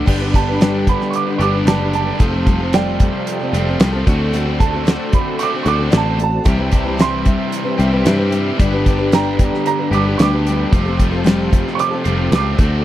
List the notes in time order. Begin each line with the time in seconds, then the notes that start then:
0.06 G1 G2 D3 G3 B3 D4 G4 B4 D5 B5, kick, crash
0.20 D4 G4 B4
0.33 G3 D4 G4 B4 A5, kick, closed hi-hat
0.48 D4 G4 B4
0.59 G3 D4 G4 B4, snare, closed hi-hat
0.86 G3 D4 G4 B4 B5, kick, closed hi-hat
1.01 snare
1.10 C#6, closed hi-hat
1.16 D6
1.26 D4 G4 B4
1.38 G1 G2 D3 G3 B3 D4 G4 C#6, closed hi-hat
1.42 B4 D6
1.53 D4 G4 B4
1.65 F#1 G2 D3 G3 B3 D4 G4 B4 A5, snare, closed hi-hat
1.80 D4 G4 B4
1.93 G3 D4 G4 A5, closed hi-hat
1.98 B4
2.19 F1 F2 C3 F3 G3 A3 C4 F4 A4 C5 F5 A5, kick, closed hi-hat
2.32 C4 F4 A4
2.46 G3 C4 F4 A4, kick, closed hi-hat
2.59 C4 F4 A4
2.73 F3 G3 C4 F4 A4 D5 G5, snare, closed hi-hat
3.00 G3 C4 F4 A4, kick, closed hi-hat
3.27 closed hi-hat
3.39 C4 F4 A4
3.53 F1 F2 C3 F3 G3 A3 C4 F4 A4, closed hi-hat
3.66 C4 F4 A4
3.80 C2 F2 C3 F3 G3 A3 C4 F4 A4, snare, closed hi-hat
3.92 C4 F4 A4
4.06 D2 D3 A3 C4 F#4 A4 D5, kick, closed hi-hat
4.32 D3 A3 C4 F#4 A4, closed hi-hat
4.44 C4 F#4 A4
4.59 A3 C4 F#4 A4 A5, kick, closed hi-hat
4.72 C4 F#4 A4
4.85 D3 A3 C4 F#4 A4, snare, closed hi-hat
5.12 A3 C4 F#4 A4 B5, kick, closed hi-hat
5.39 D3 A3 C4 F#4 C#6 D6, closed hi-hat
5.52 C4 F#4 A4
5.63 D2 A3 C4 F#4 A4 C#6, closed hi-hat
5.68 D3 A3 D6
5.78 C4 F#4 A4
5.90 A1 D3 A3 C4 F#4 A4, snare, closed hi-hat
5.97 A5
6.04 C4 F#4 A4
6.17 A3 C4 F#4 A4, closed hi-hat
6.24 A5
6.44 C2 C3 E3 G3 C4 E4 G4 B4 E5 G5, kick, closed hi-hat
6.48 G4
6.57 G3 C4 E4 B4
6.70 G3 C4 E4 B4, kick, closed hi-hat
6.84 C4 E4 B4
6.88 G3
6.97 C3 E3 G3 C4 E4 B4 C6, snare, closed hi-hat
7.24 G3 C4 E4, kick, closed hi-hat
7.52 closed hi-hat
7.63 G3 C4 E4 B4
7.78 C2 C3 E3 G3 C4 E4 G4 B4, closed hi-hat
7.91 G3 C4 E4 B4
8.04 G2 C3 E3 G3 C4 E4 G4 B4, snare, closed hi-hat
8.18 G3 C4 E4 B4
8.30 G3 C4 E4 B4, closed hi-hat
8.57 G1 G2 D3 G3 B3 D4 G4 B4 D5, kick, closed hi-hat
8.72 D4 G4 B4
8.85 G3 D4 G4 B4, kick, closed hi-hat
8.98 D4 G4 B4
9.12 G3 D4 G4 B4 A#5, snare, closed hi-hat
9.38 G3 D4 G4 B4, kick, closed hi-hat
9.54 snare
9.66 A#5, closed hi-hat
9.78 D4 G4 B4
9.91 G1 G2 D3 G3 B3 D4 D6, closed hi-hat
9.95 G4 B4
10.06 D4 G4 B4
10.17 D2 G2 D3 G3 B3 D4 G4 C#6, snare, closed hi-hat
10.22 B4 D6
10.33 D4 G4 B4
10.47 G3 D4 G4 B4, closed hi-hat
10.71 F1 F2 C3 F3 G3 A3 C5 F5 A5, kick, closed hi-hat
10.75 C4 F4 A4
10.85 C4 F4 A4
10.98 G3 C4 F4 A4, kick, closed hi-hat
11.11 C4 F4 A4
11.24 F3 G3 C4 F4 A4, snare, closed hi-hat
11.51 G3 C4 F4 A4, kick, closed hi-hat
11.67 snare
11.75 C#6
11.79 D6, closed hi-hat
11.91 C4 F4 A4
12.04 F1 F2 C3 F3 G3 A3 C4 F4 A4, closed hi-hat
12.18 C4 F4 A4
12.31 C#2 F2 C3 F3 G3 A3 C4 F4, snare, closed hi-hat
12.35 A4 D6
12.57 D2 D3 A3 C4 F#4 A4 D5 A5, kick, closed hi-hat